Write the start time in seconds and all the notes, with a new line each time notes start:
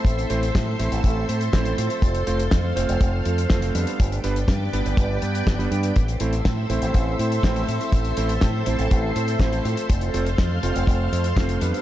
Already playing: A3 C4 E4 A4 C5 E5 C6
0.05 A1, kick, closed hi-hat
0.19 closed hi-hat
0.30 A1 A3 C4 E4 C5, closed hi-hat
0.43 closed hi-hat
0.55 A2, kick, snare, closed hi-hat
0.79 A1 A3 C4 E4 C5, closed hi-hat
0.92 A1, closed hi-hat
1.04 A1, kick, closed hi-hat
1.29 A2 A3 C4 E4 C5, closed hi-hat
1.41 closed hi-hat
1.53 A1 A3 C4 E4 C5, kick, snare, closed hi-hat
1.65 closed hi-hat
1.78 A2 A3 C4 F4 C5, closed hi-hat
1.90 closed hi-hat
2.02 F1 F5, kick, closed hi-hat
2.15 closed hi-hat
2.27 F1 A3 C4 F4 C5, closed hi-hat
2.40 closed hi-hat
2.51 F2, kick, snare, closed hi-hat
2.76 F1 A3 C4 F4 C5, closed hi-hat
2.89 F1, closed hi-hat
3.01 F1, kick, closed hi-hat
3.25 F2 A3 C4 F4 C5, closed hi-hat
3.38 closed hi-hat
3.50 F1 A3 C4 F4 C5, kick, snare, closed hi-hat
3.62 closed hi-hat
3.75 F2 G3 B3 D4 B4, closed hi-hat
3.87 closed hi-hat
3.99 G1 B4 D5 G5 D6, kick, closed hi-hat
4.12 closed hi-hat
4.24 G1 G3 B3 D4 B4, closed hi-hat
4.36 closed hi-hat
4.48 G2, kick, snare, closed hi-hat
4.73 G1 G3 B3 D4 B4, closed hi-hat
4.85 G1, closed hi-hat
4.97 G1, kick, closed hi-hat
5.22 G2 G3 B3 D4 B4, closed hi-hat
5.35 closed hi-hat
5.47 G1, kick, snare, closed hi-hat
5.59 G3 B3 D4 B4, closed hi-hat
5.71 G2 G3 B3 D4 B4, closed hi-hat
5.83 closed hi-hat
5.96 A1 A4 C5 E5 C6, kick, closed hi-hat
6.08 closed hi-hat
6.20 A1 A3 C4 E4 C5, closed hi-hat
6.33 closed hi-hat
6.45 A2, kick, snare, closed hi-hat
6.70 A1 A3 C4 E4 C5, closed hi-hat
6.82 A1, closed hi-hat
6.94 A1, kick, closed hi-hat
7.19 A2 A3 C4 E4 C5, closed hi-hat
7.32 closed hi-hat
7.43 A1 A3 C4 E4 C5, kick, snare, closed hi-hat
7.56 closed hi-hat
7.68 A2 A3 C4 E4 C5, closed hi-hat
7.81 closed hi-hat
7.92 A1, kick, closed hi-hat
8.04 closed hi-hat
8.17 A1 A3 C4 E4 C5, closed hi-hat
8.29 closed hi-hat
8.41 A2, kick, snare, closed hi-hat
8.66 A1 A3 C4 E4 C5, closed hi-hat
8.79 A1, closed hi-hat
8.91 A1, kick, closed hi-hat
9.16 A2 A3 C4 E4 C5, closed hi-hat
9.28 closed hi-hat
9.39 A1 A3 C4 E4 C5, kick, snare, closed hi-hat
9.53 closed hi-hat
9.65 A2 A3 C4 F4 C5, closed hi-hat
9.77 closed hi-hat
9.89 F1 F5 C6, kick, closed hi-hat
10.01 closed hi-hat
10.14 F1 A3 C4 F4 C5, closed hi-hat
10.26 closed hi-hat
10.38 F2, kick, snare, closed hi-hat
10.63 F1 A3 C4 F4 C5, closed hi-hat
10.76 F1, closed hi-hat
10.87 F1, kick, closed hi-hat
11.12 F2 A3 C4 F4 C5, closed hi-hat
11.24 closed hi-hat
11.37 F1 A3 C4 F4 C5, kick, snare, closed hi-hat
11.49 closed hi-hat
11.61 F2 G3 B3 D4 B4, closed hi-hat
11.74 closed hi-hat